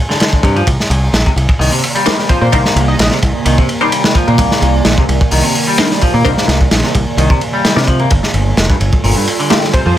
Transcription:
0.09 D3, snare
0.20 snare, ride
0.33 kick
0.43 G2 C3, kick, ride
0.56 F3, ride
0.66 C2 C3 D#3 A#3 D5, kick, ride
0.80 snare
0.90 C2, ride
1.13 A#1, snare, ride
1.25 C3, kick
1.36 C2, ride
1.49 kick
1.59 C2 D#3, open hi-hat
1.72 C3
1.84 ride
1.95 G3, ride
2.06 D4 D#4 A#4 C5, snare, ride
2.19 snare
2.29 F3 C5, kick, ride
2.41 A#2 A#3 C5
2.52 C2 D4 D#4 A#4 C5, kick, ride
2.65 snare
2.76 C2, ride
2.88 D#5
2.99 A#1 D#5, snare, ride
3.11 C3, snare
3.23 C2, kick, ride
3.45 C2 D#3, ride
3.58 C3, kick
3.69 ride
3.81 G3 D4 D#4 A#4 C5
3.92 ride
4.04 snare
4.15 F3, kick, ride
4.28 A#2 A#3, ride
4.38 C2, kick, ride
4.51 snare
4.62 C2, ride
4.85 A#1, snare, ride
4.98 C3, kick
5.09 C2, ride
5.21 kick
5.31 C2 D#3, open hi-hat
5.44 C3
5.55 open hi-hat
5.68 G3
5.78 D4 D#4 A#4 C5, snare, ride
5.91 snare
6.01 F3, kick, ride
6.14 A#2 A#3
6.25 C2 D4 D#4 A#4 C5, kick, ride
6.38 snare
6.48 C2, snare, ride
6.61 kick
6.71 A#1, snare, ride
6.83 C3, snare
6.95 C2, kick, ride
7.17 C2 D#3, ride
7.30 C3, kick
7.41 ride
7.53 G3
7.65 snare, ride
7.76 C3 D4 D#4 A#4 D5, snare
7.87 F3, kick, ride
7.99 A#3, ride
8.10 G1 G3 F4 A4, kick, ride
8.23 snare
8.34 G1, ride
8.57 F1, snare, ride
8.70 G2, kick
8.80 G1, ride
8.93 kick
9.04 G1 A#2, open hi-hat
9.16 G2
9.27 ride
9.39 D3, ride
9.50 A3 A#3 F4 G4, snare, ride
9.64 snare
9.73 C3 C5, kick, ride
9.86 F2 F3 C5

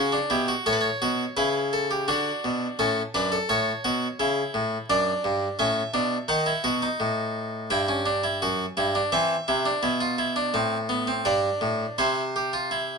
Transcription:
Already playing: C#3 C#4 F#4
0.12 D4
0.30 B2 E4 G4
0.48 F#4
0.66 A2 A4 C#5
0.73 B4
0.81 C#5
1.02 B2 F#4
1.37 C#3 E4 B4
1.73 A4
1.91 G4
2.08 D3 D4 F#4
2.44 B2
2.79 A2 C#4 A4
3.14 F#2 D4 B4
3.32 A4
3.49 A2 A4 C#5
3.84 B2 F#4
4.20 C#3 E4
4.54 A2
4.90 F#2 D4 D5
5.24 G2
5.59 A2 C#4 E5
5.94 B2 D4
6.28 D#3 D#4 F#5
6.46 E4
6.64 B2 F#4
6.82 D#4
7.00 A2
7.70 G2 E4 G5
7.88 C#4
8.06 D4
8.24 E4
8.42 F#2 F#4
8.77 G2 E4
8.95 D4
9.12 E3 C4 E5
9.48 C3 E4
9.65 D4
9.83 B2 E4
10.01 F4
10.18 E4
10.36 D4
10.54 A2 C4
10.89 B3
11.07 C4
11.25 G2 D4 D5
11.61 A2
11.98 C3 E4 C5
12.36 G4
12.53 F4
12.71 E4

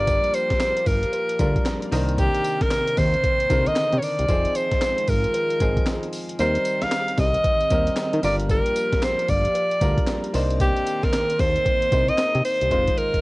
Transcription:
Already playing: G1 F3 G3 A#3 D4 F4 G4 A#4 D5
0.07 kick, closed hi-hat, tambourine, cowbell
0.24 closed hi-hat
0.34 C5, closed hi-hat, tambourine
0.50 G1, kick, snare, closed hi-hat
0.60 snare, clap, closed hi-hat, tambourine, cowbell
0.77 closed hi-hat
0.86 G1 A#4, kick, open hi-hat, tambourine
1.03 closed hi-hat
1.13 closed hi-hat, cowbell
1.29 closed hi-hat
1.39 D2 G3 D4 F4 A#4, kick, closed hi-hat, tambourine
1.56 kick, closed hi-hat
1.65 A#5, snare, clap, closed hi-hat, tambourine, cowbell
1.82 closed hi-hat
1.91 C2 C3 D#3 C4 D4 A#4 D#5, open hi-hat, tambourine
2.09 closed hi-hat
2.18 G4, kick, closed hi-hat, tambourine, cowbell
2.35 closed hi-hat
2.44 closed hi-hat, tambourine
2.61 D#2 A#4, kick, snare, closed hi-hat
2.71 snare, clap, closed hi-hat, tambourine, cowbell
2.87 closed hi-hat
2.97 D#2 C5, kick, snare, open hi-hat, tambourine
3.14 closed hi-hat
3.23 kick, closed hi-hat, cowbell
3.40 closed hi-hat
3.49 C2 D3 D#3 C4 A#4, kick, closed hi-hat, tambourine
3.66 D#5, closed hi-hat
3.76 snare, clap, closed hi-hat, tambourine, cowbell
3.92 C3, closed hi-hat
3.98 C#5
4.02 D5, open hi-hat, tambourine
4.19 C2, closed hi-hat
4.29 F1 D#3 F3 G#3 C4 D#4 F4 G#4, kick, closed hi-hat, tambourine, cowbell
4.45 closed hi-hat
4.55 C5, closed hi-hat, tambourine
4.72 G#1, kick, snare, closed hi-hat
4.81 snare, clap, closed hi-hat, tambourine, cowbell
4.98 closed hi-hat
5.08 G#1 A#4, kick, open hi-hat, tambourine
5.24 closed hi-hat
5.34 closed hi-hat, cowbell
5.50 closed hi-hat
5.60 G#1 F3 C4 D#4 G#4, kick, closed hi-hat, tambourine
5.77 kick, closed hi-hat
5.86 snare, clap, closed hi-hat, tambourine, cowbell
6.03 closed hi-hat
6.13 open hi-hat, tambourine
6.29 closed hi-hat
6.39 D#2 D#3 G3 C4 D#4 G4 A#4 C5, closed hi-hat, tambourine, cowbell
6.55 closed hi-hat
6.65 closed hi-hat, tambourine
6.82 C2 F5, snare, closed hi-hat
6.91 snare, clap, closed hi-hat, tambourine, cowbell
7.08 closed hi-hat
7.13 F5
7.18 C2 D#5, kick, snare, open hi-hat, tambourine
7.34 closed hi-hat
7.44 kick, closed hi-hat, cowbell
7.61 closed hi-hat
7.70 D#2 G3 C4 D#4 A#4, kick, closed hi-hat, tambourine
7.87 closed hi-hat
7.97 snare, clap, closed hi-hat, tambourine, cowbell
8.13 D#3, closed hi-hat
8.23 G1 F3 G3 A#3 D4 F4 A#4 D5, open hi-hat, tambourine
8.40 closed hi-hat
8.50 A#4, kick, closed hi-hat, tambourine, cowbell
8.66 closed hi-hat
8.76 closed hi-hat, tambourine
8.93 G1, kick, snare, closed hi-hat
9.02 C5, snare, clap, closed hi-hat, tambourine, cowbell
9.19 closed hi-hat
9.28 G1 D5, kick, open hi-hat, tambourine
9.45 closed hi-hat
9.55 closed hi-hat, cowbell
9.71 closed hi-hat
9.81 D2 G3 D4 F4 A#4, kick, closed hi-hat, tambourine
9.98 kick, closed hi-hat
10.07 snare, clap, closed hi-hat, tambourine, cowbell
10.24 closed hi-hat
10.34 C2 D#3 A#3 C4 D4 D#4 C5, open hi-hat, tambourine
10.50 closed hi-hat
10.60 G4, kick, closed hi-hat, tambourine, cowbell
10.76 closed hi-hat
10.86 closed hi-hat, tambourine
11.03 D#2 A#4, kick, snare, closed hi-hat
11.12 snare, clap, closed hi-hat, tambourine, cowbell
11.30 closed hi-hat
11.39 D#2 C5, kick, snare, open hi-hat, tambourine
11.56 closed hi-hat
11.65 kick, closed hi-hat, cowbell
11.82 closed hi-hat
11.92 C2 A#3 C4 D#4 C5, kick, closed hi-hat, tambourine
12.08 D#5, closed hi-hat
12.18 snare, clap, closed hi-hat, tambourine, cowbell
12.35 C3, closed hi-hat
12.45 C5, open hi-hat, tambourine
12.61 C2, closed hi-hat
12.70 F1 D#3 G#3 D#4 F4 C5, kick, closed hi-hat, cowbell
12.87 kick, closed hi-hat
12.97 A#4, closed hi-hat
13.14 F1, kick, closed hi-hat

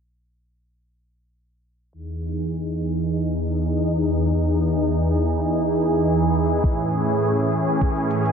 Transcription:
1.93 E2 E3 D#4 G#4, closed hi-hat
2.08 closed hi-hat
2.23 closed hi-hat
2.37 closed hi-hat
2.52 closed hi-hat
2.67 closed hi-hat
2.82 closed hi-hat
2.96 closed hi-hat
3.11 closed hi-hat
3.26 closed hi-hat
3.40 closed hi-hat
3.55 closed hi-hat
3.70 closed hi-hat
3.85 closed hi-hat
3.99 closed hi-hat
4.14 closed hi-hat
4.29 closed hi-hat
4.44 closed hi-hat
4.58 closed hi-hat
4.73 closed hi-hat
4.87 closed hi-hat
5.02 closed hi-hat
5.17 closed hi-hat
5.32 closed hi-hat
5.46 closed hi-hat
5.61 closed hi-hat
5.76 closed hi-hat
5.90 closed hi-hat
6.05 closed hi-hat
6.20 closed hi-hat
6.34 closed hi-hat
6.49 closed hi-hat
6.64 A2 C#4, kick, closed hi-hat
6.79 closed hi-hat
6.93 closed hi-hat
7.08 closed hi-hat
7.23 closed hi-hat
7.37 closed hi-hat
7.52 closed hi-hat
7.67 closed hi-hat
7.81 kick, closed hi-hat
7.96 closed hi-hat
8.11 closed hi-hat
8.26 closed hi-hat

